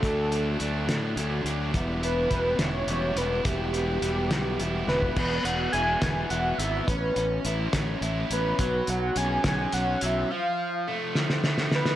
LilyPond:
<<
  \new Staff \with { instrumentName = "Analog synth lead" } { \time 6/8 \key e \dorian \tempo 4. = 70 a'4. r4. | r8 b'4 cis''4 b'8 | g'2~ g'8 b'8~ | \key e \mixolydian b'8 fis''8 gis''4 fis''8 e''8 |
b'4 r4. b'8~ | b'8 fis''8 gis''4 fis''8 e''8 | f''4 r4. b'8 | }
  \new Staff \with { instrumentName = "Overdriven electric guitar" } { \time 6/8 \key e \dorian <fis a d'>8 <fis a d'>8 <fis a d'>8 <fis a d'>8 <fis a d'>8 <fis a d'>8 | <g b e'>8 <g b e'>8 <g b e'>8 <g b e'>8 <g b e'>8 <g b e'>8 | <g b e'>8 <g b e'>8 <g b e'>8 <g b e'>8 <g b e'>8 <g b e'>8 | \key e \mixolydian b4 e'8 b8 e'8 b8 |
cis'4 e'8 cis'8 e'8 cis'8 | fis4 cis'8 fis8 cis'8 fis8 | f4 a8 f8 a8 f8 | }
  \new Staff \with { instrumentName = "Fingered electric bass" } { \clef bass \time 6/8 \key e \dorian d,4 d,8 a,8 d,8 d,8 | e,,4 e,,8 e,,8 e,,8 e,,8 | e,,4 e,,8 b,,8 e,,8 e,,8 | \key e \mixolydian e,,8 e,,8 e,,8 e,,8 e,,8 gis,,8 |
a,,8 a,,8 a,,8 a,,8 a,,8 a,,8 | b,,8 b,,8 b,,8 b,,8 b,,8 b,,8 | r2. | }
  \new DrumStaff \with { instrumentName = "Drums" } \drummode { \time 6/8 <hh bd>8 hh8 hh8 <hh sn>8 hh8 hh8 | <hh bd>8 hh8 <hh bd>8 <hh sn>8 hh8 hh8 | <hh bd>8 hh8 hh8 <hh sn>8 hh8 sn16 bd16 | <cymc bd>8 hh8 hh8 <hh bd sn>8 hh8 hh8 |
<hh bd>8 hh8 hh8 <hh bd sn>8 hh8 hh8 | <hh bd>8 hh8 hh8 <hh bd sn>8 hh8 hh8 | r4. sn16 sn16 sn16 sn16 sn16 sn16 | }
>>